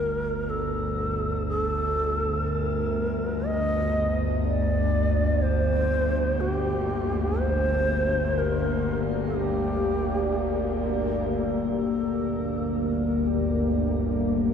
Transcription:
Already playing: synth drone G1 D2, shakuhachi A#4
0.49 shakuhachi A4
1.48 shakuhachi G#4
1.59 shakuhachi A4
2.47 shakuhachi A#4
3.44 ambient pad A#3, shakuhachi D#5
4.44 shakuhachi D5
4.96 ambient pad G4
5.42 shakuhachi C5
6.40 shakuhachi F#4
6.53 shakuhachi G4
6.94 ambient pad D5
7.39 shakuhachi C5
8.38 shakuhachi A#4
9.26 shakuhachi A4
9.35 shakuhachi G4
11.27 synth drone G1 D2, shakuhachi A4
11.77 shakuhachi A4
12.78 shakuhachi A#4
13.27 shakuhachi G4

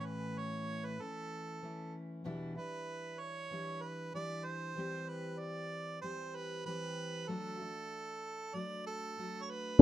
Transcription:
Already playing: steel-string acoustic guitar A2 E3 A3 C#4 E4
0.06 harmonica B4
0.38 harmonica C#5
0.85 harmonica B4
0.98 steel-string acoustic guitar E3 A3 C#4 E4, harmonica A4
1.62 steel-string acoustic guitar E3 A3 C#4 E4
2.24 steel-string acoustic guitar E2 B2 E3 G3 D4 E4
2.56 steel-string acoustic guitar E3 G3 D4 E4, harmonica B4
3.20 harmonica C#5
3.51 steel-string acoustic guitar E3 G3 D4 E4
3.81 harmonica B4
4.13 steel-string acoustic guitar E3 G3 D4 E4, harmonica D5
4.45 harmonica C5
4.75 steel-string acoustic guitar E3 G3 C4
4.79 steel-string acoustic guitar G4
5.09 harmonica B4
5.39 harmonica D5
6.01 steel-string acoustic guitar E3 G3 C4 G4, harmonica C5
6.35 harmonica B4
6.65 steel-string acoustic guitar E3 G3 C4 G4, harmonica B4
7.28 steel-string acoustic guitar F#3 A3 D4 F#4, harmonica A4
7.59 steel-string acoustic guitar A3 D4 F#4
8.54 steel-string acoustic guitar F#3 A3 D4 F#4, harmonica D5
8.87 harmonica A4
9.17 steel-string acoustic guitar F#3 A3 D4 F#4
9.43 harmonica C#5
9.50 harmonica B4

